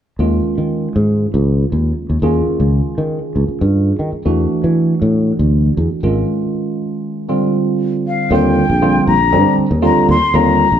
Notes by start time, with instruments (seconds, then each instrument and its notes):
0.19 fretless electric bass D#2, tine electric piano D#3 G#3 C#4 F4
0.58 fretless electric bass D#3
0.96 fretless electric bass G#2
1.34 fretless electric bass C#2
1.72 fretless electric bass D#2
2.10 fretless electric bass D#2
2.22 fretless electric bass D#2, tine electric piano D#3 C#4 F4 G#4
2.47 muted fretless electric bass stroke
2.60 fretless electric bass C#2
2.98 fretless electric bass D#3
3.36 fretless electric bass C#2
3.48 muted fretless electric bass stroke
3.61 fretless electric bass G2
3.99 fretless electric bass D#3
4.13 muted fretless electric bass stroke
4.25 fretless electric bass E2, tine electric piano E3 A3 D4 F#4
4.64 fretless electric bass E3
5.02 fretless electric bass A2
5.39 fretless electric bass D2
5.77 fretless electric bass E2
6.03 fretless electric bass G#1, tine electric piano D#3 G#3 C#4 F4
7.28 tine electric piano D3 G3 C4 F4
8.08 flute F5
8.31 fretless electric bass D#2, tine electric piano D3 G3 C4 F4, flute G5
8.70 fretless electric bass A#1
8.82 tine electric piano D3 G3 C4 F4
9.07 fretless electric bass A#1, flute A#5
9.32 fretless electric bass G2, tine electric piano D3 G3 C4 D4
9.58 muted fretless electric bass stroke
9.71 fretless electric bass D#2
9.82 tine electric piano D3 G3 C4 F4, flute A#5
9.96 muted fretless electric bass stroke
10.09 fretless electric bass D#2, flute C6
10.34 fretless electric bass D#2, tine electric piano D3 G3 C4 F4, flute A#5
10.72 fretless electric bass A#1